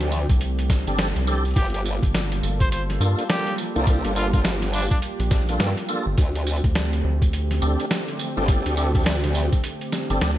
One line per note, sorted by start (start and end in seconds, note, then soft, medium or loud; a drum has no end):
0.00 0.27 D2 medium
0.00 1.52 D3 medium
0.00 1.52 A3 medium
0.00 1.52 C4 medium
0.00 1.52 G4 medium
0.00 snare soft
0.00 closed hi-hat soft
0.00 tambourine soft
0.12 tambourine medium
0.29 0.84 C2 loud
0.29 kick loud
0.29 closed hi-hat soft
0.29 tambourine soft
0.41 closed hi-hat medium
0.41 tambourine soft
0.59 closed hi-hat medium
0.59 tambourine soft
0.70 kick loud
0.70 snare medium
0.70 tambourine medium
0.87 1.13 G1 loud
0.87 1.08 C4 medium
0.87 1.08 D4 medium
0.87 1.08 G4 medium
0.87 1.08 A4 loud
0.87 closed hi-hat soft
0.87 tambourine soft
0.99 snare loud
0.99 closed hi-hat medium
0.99 tambourine soft
1.16 1.54 C2 loud
1.16 closed hi-hat medium
1.16 tambourine soft
1.27 1.44 C4 medium
1.27 1.44 D4 medium
1.27 1.44 G4 medium
1.27 1.44 A4 loud
1.27 tambourine medium
1.45 closed hi-hat soft
1.45 tambourine soft
1.48 closed hi-hat soft
1.51 closed hi-hat soft
1.54 2.00 G1 loud
1.54 6.14 G3 medium
1.54 6.14 A#3 medium
1.54 6.14 F4 medium
1.54 1.67 G4 medium
1.54 3.85 A4 medium
1.54 kick loud
1.54 closed hi-hat soft
1.57 closed hi-hat medium
1.57 tambourine soft
1.61 closed hi-hat soft
1.65 closed hi-hat soft
1.70 1.81 G4 medium
1.70 closed hi-hat soft
1.74 closed hi-hat medium
1.74 tambourine soft
1.85 tambourine medium
2.03 2.41 G1 loud
2.03 kick loud
2.03 closed hi-hat soft
2.03 tambourine soft
2.14 snare loud
2.14 closed hi-hat medium
2.14 tambourine soft
2.32 closed hi-hat medium
2.32 tambourine soft
2.43 2.99 G1 loud
2.43 tambourine medium
2.60 2.68 C5 medium
2.60 kick loud
2.60 closed hi-hat soft
2.60 tambourine soft
2.72 2.83 C5 medium
2.72 closed hi-hat medium
2.72 tambourine soft
2.90 snare soft
2.90 closed hi-hat soft
2.90 tambourine soft
3.00 3.15 G2 medium
3.00 3.24 A#3 medium
3.00 3.24 D4 medium
3.00 3.24 F4 medium
3.00 3.24 A4 medium
3.00 tambourine medium
3.19 closed hi-hat soft
3.19 tambourine soft
3.30 3.54 G4 medium
3.30 snare loud
3.30 closed hi-hat medium
3.30 tambourine soft
3.47 closed hi-hat soft
3.47 tambourine soft
3.58 tambourine medium
3.76 4.02 C2 loud
3.76 4.13 A#3 medium
3.76 4.13 D4 medium
3.76 4.13 F4 medium
3.76 4.13 A4 loud
3.76 tambourine soft
3.87 6.15 G4 medium
3.87 kick loud
3.87 closed hi-hat medium
3.87 tambourine soft
4.04 4.88 G1 loud
4.04 closed hi-hat medium
4.04 tambourine soft
4.16 4.31 A#3 medium
4.16 4.31 D4 medium
4.16 4.27 F4 loud
4.16 4.31 F4 medium
4.16 4.31 A4 loud
4.16 tambourine medium
4.33 4.44 A#3 medium
4.33 4.44 D4 medium
4.33 4.40 F4 medium
4.33 4.44 F4 medium
4.33 4.44 A4 medium
4.33 kick loud
4.33 closed hi-hat soft
4.33 tambourine soft
4.45 snare loud
4.45 closed hi-hat medium
4.45 tambourine soft
4.62 snare soft
4.62 closed hi-hat medium
4.62 tambourine soft
4.73 4.85 D4 medium
4.73 tambourine medium
4.78 tambourine medium
4.82 tambourine soft
4.87 4.98 D4 medium
4.87 tambourine soft
4.91 kick loud
4.91 closed hi-hat soft
4.91 tambourine soft
5.02 closed hi-hat medium
5.02 tambourine soft
5.20 5.58 A#1 loud
5.20 closed hi-hat soft
5.20 tambourine soft
5.31 kick loud
5.31 snare medium
5.31 tambourine medium
5.49 5.70 A#3 medium
5.49 5.69 D4 medium
5.49 5.70 F4 medium
5.49 5.70 A4 loud
5.49 closed hi-hat soft
5.49 tambourine soft
5.60 5.75 G2 medium
5.60 snare loud
5.60 closed hi-hat medium
5.60 tambourine soft
5.77 closed hi-hat soft
5.77 tambourine soft
5.89 6.06 A#3 loud
5.89 6.06 D4 medium
5.89 6.06 F4 medium
5.89 6.06 A4 loud
5.89 tambourine medium
6.06 6.16 G1 loud
6.17 6.61 D2 medium
6.17 10.38 D3 medium
6.17 10.38 A3 medium
6.17 10.38 C4 medium
6.17 10.38 G4 medium
6.17 kick loud
6.17 closed hi-hat medium
6.17 tambourine soft
6.35 closed hi-hat medium
6.35 tambourine soft
6.47 tambourine medium
6.56 tambourine soft
6.64 7.02 D2 loud
6.64 kick loud
6.64 closed hi-hat soft
6.75 snare loud
6.75 closed hi-hat medium
6.75 tambourine soft
6.93 closed hi-hat soft
6.93 tambourine soft
7.04 7.60 D2 loud
7.22 kick loud
7.22 closed hi-hat soft
7.22 tambourine soft
7.33 closed hi-hat medium
7.33 tambourine soft
7.51 snare soft
7.51 closed hi-hat soft
7.51 tambourine soft
7.62 7.77 D2 medium
7.62 7.86 C4 medium
7.62 7.86 D4 medium
7.62 7.85 G4 medium
7.62 7.85 A4 medium
7.62 tambourine medium
7.80 closed hi-hat soft
7.80 tambourine soft
7.91 snare loud
7.91 closed hi-hat medium
7.91 tambourine soft
8.08 closed hi-hat soft
8.08 tambourine soft
8.19 tambourine medium
8.37 8.63 G1 loud
8.37 8.75 C4 loud
8.37 8.75 D4 medium
8.37 8.75 G4 medium
8.37 8.75 A4 loud
8.37 tambourine soft
8.48 kick loud
8.48 closed hi-hat medium
8.48 tambourine soft
8.66 9.50 D2 medium
8.66 closed hi-hat medium
8.66 tambourine soft
8.77 8.92 C4 medium
8.77 8.92 D4 medium
8.77 8.92 G4 medium
8.77 8.92 A4 loud
8.77 tambourine medium
8.95 9.06 C4 medium
8.95 9.06 D4 medium
8.95 9.06 G4 medium
8.95 9.06 A4 loud
8.95 kick loud
8.95 closed hi-hat soft
8.95 tambourine soft
8.98 tambourine soft
9.01 tambourine soft
9.03 snare loud
9.03 closed hi-hat medium
9.03 tambourine soft
9.06 tambourine soft
9.15 tambourine soft
9.19 tambourine soft
9.24 snare soft
9.24 closed hi-hat medium
9.24 tambourine soft
9.35 tambourine medium
9.52 kick loud
9.52 closed hi-hat soft
9.52 tambourine soft
9.64 closed hi-hat medium
9.64 tambourine soft
9.81 closed hi-hat medium
9.81 tambourine soft
9.92 snare medium
9.92 tambourine medium
10.10 10.20 G1 medium
10.10 10.31 C4 medium
10.10 10.31 D4 medium
10.10 10.31 G4 medium
10.10 10.31 A4 loud
10.10 closed hi-hat soft
10.10 tambourine soft
10.21 10.38 D2 medium
10.21 snare loud
10.21 closed hi-hat medium
10.21 tambourine soft